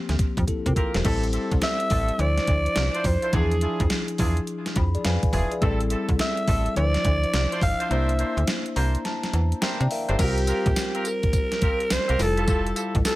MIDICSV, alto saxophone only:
0, 0, Header, 1, 2, 480
1, 0, Start_track
1, 0, Tempo, 571429
1, 882, Time_signature, 4, 2, 24, 8
1, 11049, End_track
2, 0, Start_track
2, 0, Title_t, "Alto saxophone"
2, 0, Program_c, 0, 65
2, 1371, Note_on_c, 0, 76, 110
2, 1851, Note_on_c, 0, 74, 110
2, 1864, Note_off_c, 0, 76, 0
2, 2570, Note_on_c, 0, 72, 90
2, 2583, Note_off_c, 0, 74, 0
2, 2813, Note_on_c, 0, 68, 89
2, 2826, Note_off_c, 0, 72, 0
2, 3287, Note_off_c, 0, 68, 0
2, 5209, Note_on_c, 0, 76, 98
2, 5652, Note_off_c, 0, 76, 0
2, 5683, Note_on_c, 0, 74, 105
2, 6369, Note_off_c, 0, 74, 0
2, 6408, Note_on_c, 0, 77, 101
2, 6650, Note_on_c, 0, 76, 98
2, 6663, Note_off_c, 0, 77, 0
2, 7126, Note_off_c, 0, 76, 0
2, 8577, Note_on_c, 0, 67, 91
2, 9300, Note_on_c, 0, 70, 96
2, 9313, Note_off_c, 0, 67, 0
2, 10019, Note_on_c, 0, 72, 115
2, 10032, Note_off_c, 0, 70, 0
2, 10264, Note_on_c, 0, 69, 96
2, 10277, Note_off_c, 0, 72, 0
2, 10733, Note_off_c, 0, 69, 0
2, 10969, Note_on_c, 0, 69, 107
2, 11049, Note_off_c, 0, 69, 0
2, 11049, End_track
0, 0, End_of_file